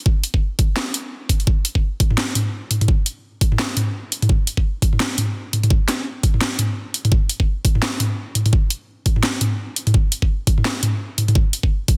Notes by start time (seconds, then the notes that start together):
0.06 kick
0.24 closed hi-hat
0.34 kick
0.59 kick, closed hi-hat
0.76 snare
0.94 closed hi-hat
1.29 kick, closed hi-hat
1.40 closed hi-hat
1.47 kick
1.65 closed hi-hat
1.75 kick
2.00 kick, closed hi-hat
2.11 mid tom
2.18 snare
2.35 closed hi-hat, mid tom
2.71 closed hi-hat, mid tom
2.81 closed hi-hat, mid tom
2.88 kick
3.06 closed hi-hat
3.41 kick, closed hi-hat
3.52 mid tom
3.59 snare
3.77 closed hi-hat, mid tom
4.12 closed hi-hat
4.22 closed hi-hat, mid tom
4.29 kick
4.47 closed hi-hat
4.57 kick
4.82 kick, closed hi-hat
4.93 mid tom
5.00 snare
5.18 closed hi-hat, mid tom
5.53 closed hi-hat, mid tom
5.63 closed hi-hat, mid tom
5.70 kick
5.88 snare, closed hi-hat
6.23 kick, closed hi-hat
6.34 mid tom
6.41 snare
6.59 closed hi-hat, mid tom
6.94 closed hi-hat
7.05 closed hi-hat, mid tom
7.12 kick
7.29 closed hi-hat
7.40 kick
7.65 kick, closed hi-hat
7.75 mid tom
7.82 snare
8.00 closed hi-hat, mid tom
8.35 closed hi-hat, mid tom
8.46 closed hi-hat, mid tom
8.53 kick
8.70 closed hi-hat
9.06 kick, closed hi-hat
9.16 mid tom
9.23 snare
9.41 closed hi-hat, mid tom
9.76 closed hi-hat
9.87 closed hi-hat, mid tom
9.94 kick
10.12 closed hi-hat
10.22 kick
10.47 kick, closed hi-hat
10.58 mid tom
10.65 snare
10.83 closed hi-hat, mid tom
11.18 closed hi-hat, mid tom
11.28 closed hi-hat, mid tom
11.35 kick
11.53 closed hi-hat
11.63 kick
11.88 kick, closed hi-hat